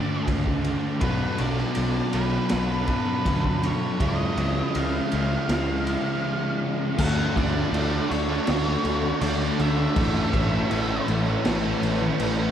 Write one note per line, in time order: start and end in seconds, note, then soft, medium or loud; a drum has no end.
0.00 0.99 D3 medium
0.00 1.01 D3 medium
0.00 1.00 A3 medium
0.00 1.01 A3 medium
0.00 1.00 D4 medium
0.00 1.01 D4 loud
0.00 1.00 F#4 medium
0.00 0.25 D5 medium
0.28 0.73 C#2 medium
0.28 kick medium
0.28 ride medium
0.46 kick medium
0.64 ride medium
1.01 1.25 B1 medium
1.01 2.11 B2 medium
1.01 2.12 F#3 medium
1.01 2.12 B3 medium
1.01 2.12 D4 medium
1.01 2.11 F#4 loud
1.01 1.40 B4 medium
1.01 kick loud
1.01 ride medium
1.38 1.62 B1 medium
1.38 2.16 D5 medium
1.38 ride medium
1.58 snare soft
1.75 2.00 B1 medium
1.75 ride medium
2.13 2.37 B1 medium
2.13 3.99 B2 medium
2.13 3.99 F#3 medium
2.13 3.98 B3 medium
2.13 3.98 D4 medium
2.13 3.98 F#4 medium
2.13 2.89 B4 medium
2.13 ride medium
2.49 2.98 B1 loud
2.49 snare loud
2.49 ride loud
2.87 3.66 B4 medium
2.87 kick medium
2.87 ride medium
3.26 3.72 D2 medium
3.26 kick medium
3.26 ride medium
3.44 kick medium
3.63 4.02 C#5 medium
3.63 ride medium
4.00 4.23 C#2 medium
4.00 5.10 C#3 medium
4.00 5.10 F3 medium
4.00 5.11 G#3 medium
4.00 5.11 C#4 medium
4.00 5.10 F4 medium
4.00 4.76 D#5 medium
4.00 kick loud
4.00 ride loud
4.37 4.60 C#2 medium
4.37 ride medium
4.75 4.98 C#2 medium
4.75 6.58 F5 medium
4.75 ride medium
5.11 5.36 C#2 medium
5.11 6.97 C#3 medium
5.11 6.97 F3 medium
5.11 6.97 G#3 medium
5.11 6.97 C#4 medium
5.11 6.96 F4 medium
5.11 ride medium
5.49 5.95 C#2 medium
5.49 snare loud
5.49 ride medium
5.87 ride medium
6.98 7.26 D2 medium
6.98 7.35 D3 medium
6.98 7.19 A3 medium
6.98 9.94 D4 medium
6.98 7.18 D4 medium
6.98 9.94 F#4 medium
6.98 7.17 F#4 loud
6.98 9.94 A4 medium
6.98 7.38 F#5 loud
6.98 12.51 A5 loud
6.98 kick loud
6.98 crash loud
6.98 crash medium
7.18 7.36 A3 medium
7.18 7.36 D4 medium
7.18 7.37 F#4 medium
7.18 snare soft
7.36 7.63 D2 loud
7.36 7.72 D3 medium
7.36 7.74 A3 medium
7.36 7.73 D4 medium
7.36 7.74 F#4 medium
7.36 8.10 D5 loud
7.36 kick medium
7.36 crash medium
7.53 7.72 A3 medium
7.53 7.72 D4 medium
7.71 7.99 D2 medium
7.71 8.08 D3 loud
7.71 8.09 A3 loud
7.71 8.09 D4 loud
7.71 8.09 F#4 loud
7.71 crash medium
8.09 8.38 D2 medium
8.09 8.66 D3 medium
8.09 8.28 A3 medium
8.09 8.27 D4 medium
8.09 9.22 C#5 medium
8.09 muted overdriven electric guitar stroke soft
8.09 crash medium
8.28 8.66 A3 medium
8.28 8.65 D4 medium
8.28 8.63 F#4 medium
8.28 muted distorted electric guitar stroke soft
8.47 8.75 D2 loud
8.47 snare loud
8.47 crash medium
8.65 8.84 A3 medium
8.65 8.84 D4 medium
8.65 8.84 F#4 medium
8.84 9.11 D2 medium
8.84 9.19 D3 medium
8.84 9.21 A3 medium
8.84 9.21 D4 medium
8.84 9.21 F#4 medium
8.84 crash medium
9.03 muted distorted electric guitar stroke soft
9.20 9.49 D2 loud
9.20 9.56 D3 medium
9.20 9.41 A3 medium
9.20 9.39 D4 loud
9.20 9.38 F#4 loud
9.20 9.61 D5 medium
9.20 crash medium
9.39 9.58 A3 medium
9.39 9.58 D4 medium
9.39 9.58 F#4 medium
9.58 9.86 D2 medium
9.58 9.94 D3 medium
9.58 9.78 A3 medium
9.58 9.76 D4 medium
9.58 9.76 F#4 medium
9.58 11.05 E5 medium
9.58 crash medium
9.77 9.95 A3 medium
9.77 9.94 D4 medium
9.77 9.94 F#4 medium
9.94 10.23 A1 medium
9.94 10.51 A2 medium
9.94 10.32 E3 medium
9.94 10.16 A3 medium
9.94 10.13 C#4 medium
9.94 10.13 E4 loud
9.94 12.51 E4 medium
9.94 12.51 B4 medium
9.94 12.51 C#5 medium
9.94 kick loud
9.94 crash medium
10.14 10.33 A3 medium
10.14 10.33 C#4 medium
10.14 10.33 E4 medium
10.33 10.61 A1 medium
10.33 10.69 E3 medium
10.33 10.70 A3 medium
10.33 10.70 C#4 medium
10.33 10.70 E4 medium
10.33 kick medium
10.33 crash medium
10.52 10.71 E3 medium
10.52 10.73 A3 medium
10.69 10.98 A1 medium
10.69 11.45 A2 loud
10.69 11.06 E3 loud
10.69 11.07 A3 loud
10.69 11.07 C#4 loud
10.69 11.07 E4 loud
10.69 crash medium
11.06 11.35 A1 medium
11.06 11.64 A2 medium
11.06 11.27 E3 medium
11.06 12.51 A3 medium
11.06 muted overdriven electric guitar stroke soft
11.06 crash medium
11.11 11.27 A3 medium
11.26 11.64 A3 medium
11.26 11.62 C#4 medium
11.26 11.61 E4 medium
11.26 muted distorted electric guitar stroke medium
11.45 11.73 A1 loud
11.45 snare loud
11.45 crash medium
11.62 11.83 A3 medium
11.62 11.82 C#4 medium
11.62 11.83 E4 medium
11.66 12.00 E3 medium
11.81 12.09 A1 medium
11.81 12.17 E3 medium
11.81 12.19 A3 medium
11.81 12.18 C#4 medium
11.81 12.19 E4 medium
11.81 crash medium
12.01 muted distorted electric guitar stroke soft
12.18 12.47 A1 medium
12.18 12.51 A2 medium
12.18 12.51 E3 medium
12.18 12.39 A3 medium
12.18 12.37 C#4 medium
12.18 12.37 E4 medium
12.18 crash medium
12.38 12.51 E3 medium
12.38 12.51 A3 medium
12.38 12.51 C#4 medium
12.38 12.51 E4 medium